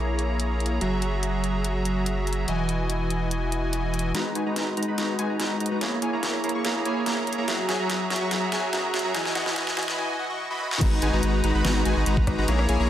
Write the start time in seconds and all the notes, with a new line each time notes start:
Already playing: A#1 A#3 E4 G#4 C#5 A#5
0.19 closed hi-hat
0.40 closed hi-hat
0.60 closed hi-hat
0.66 closed hi-hat
0.81 F#1 F#3 F#4 G#4 E5 A#5, closed hi-hat
1.02 closed hi-hat
1.23 closed hi-hat
1.44 closed hi-hat
1.64 closed hi-hat
1.85 closed hi-hat
2.06 closed hi-hat
2.27 closed hi-hat
2.33 closed hi-hat
2.48 E1 E3 E4 F#4 D#5 G#5, closed hi-hat
2.69 closed hi-hat
2.90 closed hi-hat
3.10 closed hi-hat
3.31 closed hi-hat
3.52 closed hi-hat
3.73 closed hi-hat
3.94 closed hi-hat
3.99 closed hi-hat
4.14 G#1 G#3 D#4 F#4 B4 A#5, snare, closed hi-hat
4.35 G#1 G#3 D#4 F#4 B4 G#5, closed hi-hat
4.46 G#1 G#3 D#4 F#4 B4 A#5
4.56 G#1 G#3 D#4 F#4 B4 A#5, snare, closed hi-hat
4.77 G#1 G#3 D#4 F#4 B4 A#5, closed hi-hat
4.83 closed hi-hat
4.88 G#1 G#3 D#4 F#4 B4 B5
4.98 G#1 G#3 D#4 F#4 B4 A#5, snare, closed hi-hat
5.19 G#1 G#3 D#4 F#4 B4 G#5, closed hi-hat
5.30 G#1 G#3 D#4 F#4 B4 A#5
5.39 G#1 G#3 D#4 F#4 B4 A#5, snare, closed hi-hat
5.60 G#2 G#3 D#4 F#4 B4 A#5, closed hi-hat
5.66 closed hi-hat
5.71 G#1 G#3 D#4 F#4 B4 A#5
5.81 A#1 A#3 E4 G#4 C#5 A#5, snare, closed hi-hat
6.02 A#1 A#3 E4 G#4 C#5 G#5, closed hi-hat
6.13 A#1 A#3 E4 G#4 C#5 A#5
6.23 A#1 A#3 E4 G#4 C#5 A#5, snare, closed hi-hat
6.44 A#1 A#3 E4 G#4 C#5 A#5, closed hi-hat
6.49 closed hi-hat
6.55 A#1 A#3 E4 G#4 C#5 C#6
6.65 A#1 A#3 E4 G#4 C#5 A#5, snare, closed hi-hat
6.85 A#1 A#3 E4 G#4 C#5 G#5, closed hi-hat
6.96 A#1 A#3 E4 G#4 C#5 A#5
7.06 A#1 A#3 E4 G#4 C#5 A#5, snare, closed hi-hat
7.27 A#1 A#3 E4 G#4 C#5 A#5, closed hi-hat
7.33 closed hi-hat
7.38 A#1 A#3 E4 G#4 C#5 A#5
7.48 F#1 F#3 F#4 G#4 E5 A#5, snare, closed hi-hat
7.69 F#1 F#3 F#4 G#4 E5 G#5, snare, closed hi-hat
7.80 F#1 F#3 F#4 G#4 E5 A#5
7.89 F#1 F#3 F#4 G#4 E5 A#5, snare, closed hi-hat
8.10 F#1 F#3 F#4 G#4 E5 A#5, snare, closed hi-hat
8.16 closed hi-hat
8.21 F#1 F#3 F#4 G#4 E5 C#6
8.31 F#1 F#3 F#4 G#4 E5 A#5, snare, closed hi-hat
8.52 F#1 F#3 F#4 G#4 E5 G#5, snare, closed hi-hat
8.63 F#1 F#3 F#4 G#4 E5 A#5
8.73 F#2 F#3 F#4 G#4 E5 A#5, snare, closed hi-hat
8.94 F#1 F#3 F#4 G#4 E5 A#5, snare, closed hi-hat
8.99 closed hi-hat
9.05 F#2 F#3 F#4 G#4 E5 A#5
9.14 E1 E3 E4 F#4 D#5 G#5, snare, closed hi-hat
9.26 snare
9.35 E1 E3 E4 F#4 D#5 F#5, snare, closed hi-hat
9.46 E1 E3 E4 F#4 D#5 G#5, snare
9.56 E1 E3 E4 F#4 D#5 G#5, snare, closed hi-hat
9.67 snare
9.77 E1 E3 E4 F#4 D#5 G#5, snare, closed hi-hat
9.83 closed hi-hat
9.88 E3 E4 F#4 D#5 B5, snare
9.98 E3 E4 F#4 D#5 G#5
10.19 E3 E4 F#4 D#5 F#5
10.30 E3 E4 F#4 D#5 C#6
10.50 E3 E4 F#4 D#5 B5
10.60 high tom
10.71 E3 E4 F#4 D#5 C#6, snare
10.81 G#1 G#3 D#4 F#4 B4 A#5, kick, closed hi-hat, crash
11.02 G#1 G#3 D#4 F#4 B4 G#5, closed hi-hat
11.13 G#1 G#3 D#4 F#4 B4 A#5
11.23 G#1 G#3 D#4 F#4 B4 A#5, closed hi-hat
11.44 G#1 G#3 D#4 F#4 B4 A#5, closed hi-hat
11.54 G#1 G#3 D#4 F#4 B4 B5
11.65 G#1 G#3 D#4 F#4 B4 A#5, snare, closed hi-hat
11.85 G#1 G#3 D#4 F#4 B4 G#5, closed hi-hat
11.96 G#1 G#3 D#4 F#4 B4 A#5
12.06 G#1 G#3 D#4 F#4 B4 A#5, closed hi-hat
12.17 kick
12.27 G#1 G#3 D#4 F#4 B4 A#5, kick, cross-stick, closed hi-hat
12.38 G#1 G#3 D#4 F#4 B4 A#5
12.48 A#1 A#3 E4 G#4 C#5 A#5, closed hi-hat
12.59 cross-stick
12.69 A#1 A#3 E4 G#4 C#5 G#5, closed hi-hat
12.80 A#1 A#3 E4 G#4 C#5 A#5